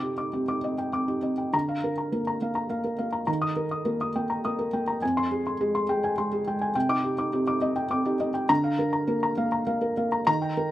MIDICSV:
0, 0, Header, 1, 2, 480
1, 0, Start_track
1, 0, Tempo, 594648
1, 1239, Time_signature, 3, 2, 24, 8
1, 1714, Tempo, 578592
1, 6514, Tempo, 592885
1, 8785, End_track
2, 0, Start_track
2, 0, Title_t, "Felt piano"
2, 0, Program_c, 0, 0
2, 0, Control_c, 0, 64, 127
2, 0, Note_on_c, 0, 48, 57
2, 0, Note_on_c, 0, 63, 40
2, 0, Note_on_c, 0, 79, 48
2, 0, Note_on_c, 0, 86, 62
2, 22, Note_on_c, 0, 67, 45
2, 103, Note_off_c, 0, 63, 0
2, 103, Note_off_c, 0, 86, 0
2, 143, Note_on_c, 0, 86, 40
2, 145, Note_on_c, 0, 63, 39
2, 223, Note_off_c, 0, 67, 0
2, 268, Note_on_c, 0, 60, 47
2, 268, Note_on_c, 0, 67, 49
2, 344, Note_off_c, 0, 86, 0
2, 345, Note_off_c, 0, 63, 0
2, 390, Note_on_c, 0, 63, 39
2, 391, Note_on_c, 0, 86, 50
2, 466, Note_off_c, 0, 67, 0
2, 467, Note_off_c, 0, 60, 0
2, 516, Note_on_c, 0, 75, 49
2, 517, Note_on_c, 0, 60, 44
2, 587, Note_off_c, 0, 63, 0
2, 588, Note_off_c, 0, 86, 0
2, 632, Note_off_c, 0, 79, 0
2, 632, Note_on_c, 0, 79, 43
2, 710, Note_off_c, 0, 75, 0
2, 711, Note_off_c, 0, 60, 0
2, 752, Note_on_c, 0, 86, 49
2, 753, Note_on_c, 0, 60, 43
2, 828, Note_off_c, 0, 79, 0
2, 871, Note_on_c, 0, 63, 39
2, 872, Note_on_c, 0, 67, 41
2, 948, Note_off_c, 0, 60, 0
2, 948, Note_off_c, 0, 86, 0
2, 988, Note_on_c, 0, 60, 38
2, 990, Note_on_c, 0, 75, 42
2, 1067, Note_off_c, 0, 63, 0
2, 1068, Note_off_c, 0, 67, 0
2, 1112, Note_on_c, 0, 79, 40
2, 1186, Note_off_c, 0, 60, 0
2, 1186, Note_off_c, 0, 75, 0
2, 1201, Note_off_c, 0, 48, 0
2, 1235, Note_off_c, 0, 79, 0
2, 1236, Note_on_c, 0, 50, 59
2, 1239, Note_on_c, 0, 82, 71
2, 1256, Control_c, 0, 64, 0
2, 1360, Note_on_c, 0, 77, 44
2, 1398, Control_c, 0, 64, 127
2, 1430, Note_off_c, 0, 82, 0
2, 1484, Note_on_c, 0, 70, 49
2, 1549, Note_off_c, 0, 77, 0
2, 1597, Note_on_c, 0, 82, 39
2, 1670, Note_off_c, 0, 70, 0
2, 1713, Note_on_c, 0, 58, 42
2, 1714, Note_on_c, 0, 70, 48
2, 1788, Note_off_c, 0, 82, 0
2, 1838, Note_on_c, 0, 82, 50
2, 1907, Note_off_c, 0, 58, 0
2, 1908, Note_off_c, 0, 70, 0
2, 1957, Note_on_c, 0, 58, 48
2, 1961, Note_on_c, 0, 77, 47
2, 2029, Note_off_c, 0, 82, 0
2, 2069, Note_on_c, 0, 82, 46
2, 2147, Note_off_c, 0, 58, 0
2, 2149, Note_off_c, 0, 77, 0
2, 2189, Note_on_c, 0, 58, 41
2, 2190, Note_on_c, 0, 77, 51
2, 2262, Note_off_c, 0, 82, 0
2, 2311, Note_on_c, 0, 70, 40
2, 2381, Note_off_c, 0, 58, 0
2, 2382, Note_off_c, 0, 77, 0
2, 2429, Note_on_c, 0, 77, 49
2, 2433, Note_on_c, 0, 58, 45
2, 2502, Note_off_c, 0, 70, 0
2, 2545, Note_on_c, 0, 82, 45
2, 2621, Note_off_c, 0, 77, 0
2, 2623, Note_off_c, 0, 58, 0
2, 2636, Note_off_c, 0, 50, 0
2, 2653, Note_off_c, 0, 82, 0
2, 2665, Note_on_c, 0, 82, 59
2, 2667, Note_on_c, 0, 51, 65
2, 2688, Control_c, 0, 64, 0
2, 2786, Note_on_c, 0, 87, 64
2, 2815, Control_c, 0, 64, 127
2, 2862, Note_off_c, 0, 82, 0
2, 2909, Note_on_c, 0, 70, 52
2, 2984, Note_off_c, 0, 87, 0
2, 3033, Note_on_c, 0, 87, 45
2, 3107, Note_off_c, 0, 70, 0
2, 3148, Note_on_c, 0, 58, 45
2, 3148, Note_on_c, 0, 70, 53
2, 3229, Note_off_c, 0, 87, 0
2, 3278, Note_on_c, 0, 87, 51
2, 3347, Note_off_c, 0, 58, 0
2, 3348, Note_off_c, 0, 70, 0
2, 3399, Note_on_c, 0, 58, 52
2, 3401, Note_on_c, 0, 79, 54
2, 3473, Note_off_c, 0, 87, 0
2, 3518, Note_on_c, 0, 82, 49
2, 3593, Note_off_c, 0, 58, 0
2, 3593, Note_off_c, 0, 79, 0
2, 3641, Note_on_c, 0, 87, 54
2, 3644, Note_on_c, 0, 58, 49
2, 3711, Note_off_c, 0, 82, 0
2, 3758, Note_on_c, 0, 70, 44
2, 3832, Note_off_c, 0, 87, 0
2, 3834, Note_off_c, 0, 58, 0
2, 3878, Note_on_c, 0, 58, 46
2, 3879, Note_on_c, 0, 79, 52
2, 3950, Note_off_c, 0, 70, 0
2, 3997, Note_on_c, 0, 82, 50
2, 4070, Note_off_c, 0, 58, 0
2, 4070, Note_off_c, 0, 79, 0
2, 4084, Note_off_c, 0, 51, 0
2, 4118, Note_off_c, 0, 82, 0
2, 4120, Note_on_c, 0, 80, 64
2, 4121, Note_on_c, 0, 41, 63
2, 4134, Control_c, 0, 64, 0
2, 4242, Note_on_c, 0, 84, 70
2, 4276, Control_c, 0, 64, 127
2, 4310, Note_off_c, 0, 80, 0
2, 4362, Note_on_c, 0, 68, 55
2, 4429, Note_off_c, 0, 84, 0
2, 4487, Note_on_c, 0, 84, 49
2, 4548, Note_off_c, 0, 68, 0
2, 4603, Note_on_c, 0, 68, 53
2, 4604, Note_on_c, 0, 56, 57
2, 4670, Note_off_c, 0, 84, 0
2, 4722, Note_on_c, 0, 84, 60
2, 4788, Note_off_c, 0, 68, 0
2, 4789, Note_off_c, 0, 56, 0
2, 4838, Note_on_c, 0, 56, 58
2, 4840, Note_on_c, 0, 79, 61
2, 4908, Note_off_c, 0, 84, 0
2, 4963, Note_on_c, 0, 80, 54
2, 5027, Note_off_c, 0, 56, 0
2, 5028, Note_off_c, 0, 79, 0
2, 5078, Note_on_c, 0, 56, 59
2, 5079, Note_on_c, 0, 84, 57
2, 5150, Note_off_c, 0, 80, 0
2, 5199, Note_on_c, 0, 68, 51
2, 5267, Note_off_c, 0, 56, 0
2, 5268, Note_off_c, 0, 84, 0
2, 5323, Note_on_c, 0, 56, 52
2, 5324, Note_on_c, 0, 79, 55
2, 5387, Note_off_c, 0, 68, 0
2, 5440, Note_on_c, 0, 80, 56
2, 5510, Note_off_c, 0, 56, 0
2, 5510, Note_off_c, 0, 79, 0
2, 5520, Note_off_c, 0, 41, 0
2, 5555, Note_on_c, 0, 79, 72
2, 5556, Note_off_c, 0, 80, 0
2, 5556, Note_on_c, 0, 48, 73
2, 5565, Control_c, 0, 64, 0
2, 5669, Note_on_c, 0, 63, 53
2, 5671, Note_on_c, 0, 86, 78
2, 5698, Control_c, 0, 64, 127
2, 5746, Note_off_c, 0, 79, 0
2, 5792, Note_on_c, 0, 67, 54
2, 5864, Note_off_c, 0, 63, 0
2, 5865, Note_off_c, 0, 86, 0
2, 5912, Note_on_c, 0, 86, 51
2, 5915, Note_on_c, 0, 63, 47
2, 5985, Note_off_c, 0, 67, 0
2, 6032, Note_on_c, 0, 67, 61
2, 6034, Note_on_c, 0, 60, 56
2, 6105, Note_off_c, 0, 86, 0
2, 6106, Note_off_c, 0, 63, 0
2, 6152, Note_on_c, 0, 63, 59
2, 6153, Note_on_c, 0, 86, 59
2, 6225, Note_off_c, 0, 67, 0
2, 6226, Note_off_c, 0, 60, 0
2, 6267, Note_on_c, 0, 60, 56
2, 6270, Note_on_c, 0, 75, 68
2, 6345, Note_off_c, 0, 63, 0
2, 6346, Note_off_c, 0, 86, 0
2, 6389, Note_on_c, 0, 79, 59
2, 6463, Note_off_c, 0, 60, 0
2, 6465, Note_off_c, 0, 75, 0
2, 6511, Note_on_c, 0, 60, 57
2, 6513, Note_on_c, 0, 86, 63
2, 6583, Note_off_c, 0, 79, 0
2, 6632, Note_on_c, 0, 67, 57
2, 6634, Note_on_c, 0, 63, 55
2, 6702, Note_off_c, 0, 60, 0
2, 6703, Note_off_c, 0, 86, 0
2, 6749, Note_on_c, 0, 75, 62
2, 6752, Note_on_c, 0, 60, 57
2, 6823, Note_off_c, 0, 67, 0
2, 6824, Note_off_c, 0, 63, 0
2, 6862, Note_on_c, 0, 79, 60
2, 6940, Note_off_c, 0, 75, 0
2, 6942, Note_off_c, 0, 60, 0
2, 6959, Note_off_c, 0, 48, 0
2, 6985, Note_off_c, 0, 79, 0
2, 6985, Note_on_c, 0, 82, 92
2, 6986, Note_on_c, 0, 50, 83
2, 7004, Control_c, 0, 64, 0
2, 7103, Note_on_c, 0, 77, 59
2, 7145, Control_c, 0, 64, 127
2, 7177, Note_off_c, 0, 82, 0
2, 7226, Note_on_c, 0, 70, 59
2, 7296, Note_off_c, 0, 77, 0
2, 7339, Note_on_c, 0, 82, 52
2, 7417, Note_off_c, 0, 70, 0
2, 7457, Note_on_c, 0, 58, 56
2, 7460, Note_on_c, 0, 70, 64
2, 7534, Note_off_c, 0, 82, 0
2, 7583, Note_on_c, 0, 82, 62
2, 7654, Note_off_c, 0, 58, 0
2, 7655, Note_off_c, 0, 70, 0
2, 7700, Note_on_c, 0, 77, 64
2, 7701, Note_on_c, 0, 58, 54
2, 7776, Note_off_c, 0, 82, 0
2, 7818, Note_on_c, 0, 82, 53
2, 7895, Note_off_c, 0, 77, 0
2, 7896, Note_off_c, 0, 58, 0
2, 7936, Note_on_c, 0, 77, 58
2, 7937, Note_on_c, 0, 58, 52
2, 8014, Note_off_c, 0, 82, 0
2, 8057, Note_on_c, 0, 70, 57
2, 8134, Note_off_c, 0, 77, 0
2, 8135, Note_off_c, 0, 58, 0
2, 8185, Note_on_c, 0, 58, 51
2, 8185, Note_on_c, 0, 77, 53
2, 8256, Note_off_c, 0, 70, 0
2, 8304, Note_on_c, 0, 82, 57
2, 8381, Note_off_c, 0, 58, 0
2, 8381, Note_off_c, 0, 77, 0
2, 8398, Note_off_c, 0, 50, 0
2, 8411, Note_off_c, 0, 82, 0
2, 8423, Note_on_c, 0, 82, 95
2, 8424, Note_on_c, 0, 51, 68
2, 8447, Control_c, 0, 64, 0
2, 8544, Note_on_c, 0, 79, 51
2, 8589, Control_c, 0, 64, 127
2, 8622, Note_off_c, 0, 82, 0
2, 8671, Note_on_c, 0, 70, 56
2, 8742, Note_off_c, 0, 79, 0
2, 8785, Note_off_c, 0, 51, 0
2, 8785, Note_off_c, 0, 70, 0
2, 8785, End_track
0, 0, End_of_file